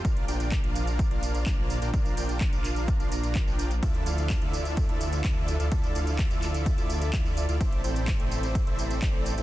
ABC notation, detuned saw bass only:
X:1
M:4/4
L:1/16
Q:1/4=127
K:Bblyd
V:1 name="Detuned saw bass" clef=bass
B,,,2 B,,,3 B,,,4 B,,,3 B,,,3 B,,, | B,,,2 B,,,3 B,,,4 B,,, B,,,3 B,,,3 | D,,2 D,,3 D,,4 D,,3 D,,3 D,, | D,,2 D,,3 D,,4 D,,3 D,,3 D,, |
A,,,2 A,,,3 A,,,4 A,,,3 A,,,3 A,,, |]